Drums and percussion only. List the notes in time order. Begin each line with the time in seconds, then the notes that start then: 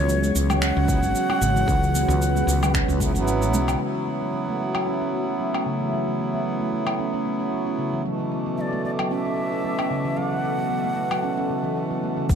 0.09 cabasa
0.24 cabasa
0.36 cabasa
0.50 high conga, low conga, cabasa, low woodblock
0.62 finger snap, cabasa
0.88 kick, low conga, cabasa
1.03 cabasa
1.16 cabasa
1.30 muted conga, low woodblock
1.42 cabasa
1.57 cabasa
1.68 kick, cabasa
1.83 cabasa
1.95 muted conga, high conga, cabasa
2.09 muted conga, low conga, cabasa
2.22 cabasa
2.37 cabasa
2.49 cabasa
2.63 high conga, low conga, cabasa, low woodblock
2.74 finger snap, kick, cabasa
2.89 high conga, cabasa
3.00 kick, muted conga, high conga, cabasa
3.15 muted conga, cabasa
3.28 cabasa
3.42 cabasa
3.54 muted conga, high conga, cabasa
3.68 cabasa, low woodblock
4.75 low woodblock
5.54 low woodblock
6.87 low woodblock
8.99 low woodblock
9.79 low woodblock
11.11 low woodblock
12.29 kick, cabasa